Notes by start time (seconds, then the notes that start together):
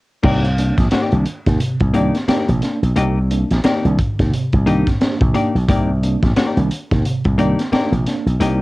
0.23 C2 C3 A#3 D#4 G4 D5, kick, crash
0.45 closed hi-hat
0.58 A#3 D4, closed hi-hat
0.78 A#1, kick, snare, closed hi-hat
0.91 A#3 D#4 G4 D5, muted slap bass stroke, snare, closed hi-hat
1.12 C2 D#3 A#3 D4, closed hi-hat
1.26 closed hi-hat
1.46 D#2 C3, kick, snare, closed hi-hat
1.60 C3, muted slap bass stroke, closed hi-hat
1.80 C2, kick, closed hi-hat
1.94 D#3 A#3 D4 D#4 G4 D5, closed hi-hat
2.15 A#3 D4, snare, closed hi-hat
2.28 A#3 D4 D#4 G4 D5, muted slap bass stroke, snare, closed hi-hat
2.49 A#1 C3, closed hi-hat
2.62 A#3 D4, snare, closed hi-hat
2.82 B1, closed hi-hat
2.96 C2 C3 A#3 D#4 G4 D#5, closed hi-hat
3.31 A#3 D4, closed hi-hat
3.51 A#1, snare, closed hi-hat
3.64 A#3 D#4 G4 D5, snare, closed hi-hat
3.85 C2 D#3 A#3 D4, closed hi-hat
3.99 kick, closed hi-hat
4.19 D#2 C3, kick, snare, closed hi-hat
4.32 C3, muted slap bass stroke, closed hi-hat
4.52 C2, kick, closed hi-hat
4.66 D#3 A#3 D4 D#4 G4 D#5, closed hi-hat
4.87 A#3 D4, kick, snare, closed hi-hat
5.01 A#3 D4, muted slap bass stroke, snare, closed hi-hat
5.21 A#1 C3, kick, closed hi-hat
5.34 A#3 D4 D#4 G4 D5, closed hi-hat
5.55 B1, closed hi-hat
5.68 C2 C3 A#3 D#4 G4 D5, kick, closed hi-hat
6.03 A#3 D4, closed hi-hat
6.23 A#1, kick, snare, closed hi-hat
6.36 A#3 D#4 G4 D5, muted slap bass stroke, snare, closed hi-hat
6.57 C2 D#3 A#3 D4, closed hi-hat
6.71 closed hi-hat
6.91 D#2 C3, kick, snare, closed hi-hat
7.05 C3, muted slap bass stroke, closed hi-hat
7.24 C2, kick, closed hi-hat
7.38 D#3 A#3 D4 D#4 G4 D5, closed hi-hat
7.59 A#3 D4, snare, closed hi-hat
7.72 A#3 D4 D#4 G4 D5, muted slap bass stroke, snare, closed hi-hat
7.92 A#1 C3, closed hi-hat
8.06 A#3 D4, snare, closed hi-hat
8.26 B1, closed hi-hat
8.40 C2 C3 A#3 D#4 G4 D#5, closed hi-hat